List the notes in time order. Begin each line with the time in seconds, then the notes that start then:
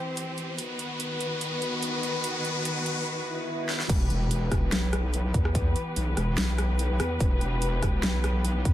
Already playing: E3 C4 G4 C5, riser
0.17 closed hi-hat
0.38 closed hi-hat
0.58 D#3 B3 F#4 B4, closed hi-hat
0.79 closed hi-hat
1.00 closed hi-hat
1.21 closed hi-hat
1.41 closed hi-hat
1.62 closed hi-hat
1.83 closed hi-hat
2.03 closed hi-hat
2.24 closed hi-hat
2.45 closed hi-hat
2.65 closed hi-hat
2.86 closed hi-hat
3.07 swell
3.69 snare
3.80 snare
3.89 E1 E3 B3 G4 B4, kick, closed hi-hat, crash, impact
4.10 E1, closed hi-hat
4.31 closed hi-hat
4.52 E1, kick, cross-stick, closed hi-hat
4.72 B1, snare, closed hi-hat
4.93 cross-stick, closed hi-hat
5.14 closed hi-hat
5.34 E2, kick, closed hi-hat
5.45 cross-stick
5.55 kick, closed hi-hat
5.76 closed hi-hat
5.96 B1, closed hi-hat
6.17 E1, cross-stick, closed hi-hat
6.38 B1, snare, closed hi-hat
6.58 cross-stick, closed hi-hat
6.79 closed hi-hat
7.00 E2, cross-stick, closed hi-hat
7.20 E1, kick, closed hi-hat
7.41 E1, closed hi-hat
7.62 closed hi-hat
7.83 E1, kick, cross-stick, closed hi-hat
8.03 B1, snare, closed hi-hat
8.24 cross-stick, closed hi-hat
8.45 closed hi-hat
8.65 E2, kick, closed hi-hat